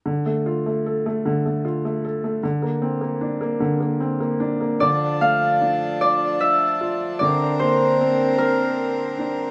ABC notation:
X:1
M:6/8
L:1/16
Q:3/8=50
K:Dm
V:1 name="Harp"
z12 | z12 | d2 f4 d2 e4 | d2 c4 B4 z2 |]
V:2 name="Harmonium"
z12 | z12 | [F,DA]12 | [D,CB]12 |]
V:3 name="Felt piano"
D, A, F A, A A, D, A, F A, A A, | D, B, C B, D B, D, B, C B, D B, | D,2 A,2 D6 F2 | D,2 B,2 C6 D2 |]